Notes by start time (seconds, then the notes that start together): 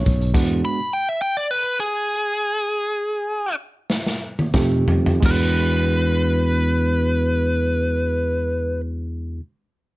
Already playing: A3 C#4 D#4 A4 C#5
0.06 B1, kick, closed hi-hat
0.21 closed hi-hat
0.34 E2 G#3 B3 D4 F#4, kick, closed hi-hat, crash
0.65 B5
0.93 G5
1.09 E5
1.22 G5
1.37 D5
1.51 B4
1.80 G#4
3.90 snare
4.07 snare
4.39 high tom
4.54 F2 A3 C4 D#4 G4, kick, snare, mid tom
4.88 F2, floor tom
5.06 floor tom
5.20 E2 G#3 B3 D4, kick, crash
5.25 F#4 B4